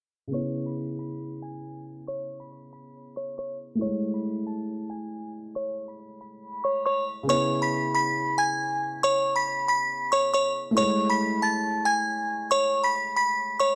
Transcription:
0.28 C#3 B3
0.33 E4 C#5 C#6
0.39 C#5
0.66 B5 B6
0.99 B5 B6
1.42 G#5 G#6
2.07 C#5 C#6
2.40 B5 B6
2.73 B5 B6
3.16 C#5 C#6
3.38 C#5 C#6
3.75 A3 E4
3.81 G#3 C#5 C#6
3.86 C#5
4.14 B5 B6
4.47 A5 A6
4.90 G#5 G#6
5.55 C#5 C#6
5.88 B5 B6
6.21 B5 B6
6.64 C#5 C#6
6.86 C#5 C#6
7.23 C#3 B3
7.29 E4 C#5 C#6
7.34 C#5
7.62 B5 B6
7.95 B5 B6
8.38 G#5 G#6
9.03 C#5 C#6
9.36 B5 B6
9.68 B5 B6
10.12 C#5 C#6
10.34 C#5 C#6
10.71 A3 E4
10.77 G#3 C#5 C#6
10.82 C#5
11.10 B5 B6
11.42 A5 A6
11.85 G#5 G#6
12.51 C#5 C#6
12.84 B5 B6
13.16 B5 B6
13.60 C#5 C#6

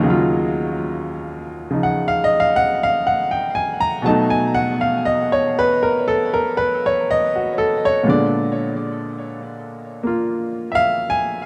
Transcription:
Already playing: D#4 F#4 G#4 A#4 C#5 D#5 F5
0.00 D#2 C#3
0.06 F#3 F4
1.70 C#3 F3 D#4
1.83 F#5
2.08 F5
2.24 D#5
2.40 F5
2.56 F#5
2.83 F5
3.07 F#5
3.31 G5
3.55 G#5
3.80 A#5
4.02 B2 F#3 A3 A5
4.07 D#4
4.30 G#5
4.55 F#5
4.81 F5
5.05 D#5
5.32 C#5
5.59 B4
5.83 A#4
6.08 A4
6.34 A#4
6.57 B4
6.86 C#5
7.11 D#5
7.35 F#4
7.58 A4
7.85 C#5
8.03 A#2 G#3 B3
8.08 D3 D5
10.03 A#3 F4
10.72 E5 F5
11.10 G#5

